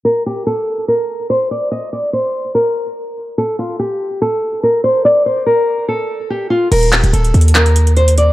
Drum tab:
CC |------------------------------------------------|------------------------------------------------|------------------------------------------------|------------------------------------------------|
HH |------------------------------------------------|------------------------------------------------|------------------------------------------------|------------------------------------------------|
CP |------------------------------------------------|------------------------------------------------|------------------------------------------------|------------------------------------------------|

CC |x-----------------------------------------------|
HH |x--x--x--x--x--x--x-x-x-x--x--x--x--x--x--x-----|
CP |------x-----------------x-----------------------|